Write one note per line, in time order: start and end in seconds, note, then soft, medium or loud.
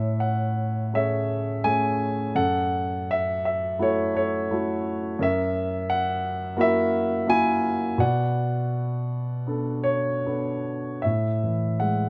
0.00 2.31 A2 medium
0.00 0.90 C#5 soft
0.00 0.17 E5 medium
0.20 0.96 F#5 medium
0.94 1.62 A3 soft
0.94 1.62 C#4 soft
0.94 1.62 G#4 soft
0.94 2.31 C#5 medium
0.94 1.67 E5 medium
1.64 2.32 A3 soft
1.64 2.33 C#4 soft
1.64 2.33 G#4 soft
1.64 2.30 G#5 medium
2.35 5.16 F#2 medium
2.35 3.76 A4 medium
2.35 3.10 F#5 medium
3.11 3.44 E5 medium
3.45 3.78 E5 medium
3.79 4.47 A3 soft
3.79 4.48 E4 soft
3.79 4.48 F#4 soft
3.79 4.13 A4 soft
3.79 4.15 C#5 medium
4.15 5.16 A4 medium
4.15 5.24 C#5 medium
4.51 5.18 A3 soft
4.51 5.18 E4 soft
4.51 5.19 F#4 soft
5.19 7.95 F#2 medium
5.19 6.54 A#4 medium
5.19 5.92 E5 medium
5.90 6.60 F#5 medium
6.57 7.25 A#3 medium
6.57 7.25 E4 soft
6.57 7.25 F#4 medium
6.57 7.96 A#4 medium
6.57 7.25 E5 medium
7.27 7.97 A#3 soft
7.27 7.97 E4 soft
7.27 7.97 F#4 soft
7.27 8.02 G#5 loud
7.98 11.00 B2 medium
7.98 10.22 D5 medium
7.98 10.22 F#5 medium
9.47 10.23 B3 soft
9.47 10.24 D4 soft
9.47 10.24 A4 soft
9.84 10.61 C#5 medium
10.26 11.03 B3 soft
10.26 11.03 D4 soft
10.26 11.03 A4 soft
11.02 12.09 A2 soft
11.02 11.82 E5 medium
11.43 12.09 E3 soft
11.80 12.09 G#3 soft
11.80 12.09 F#5 medium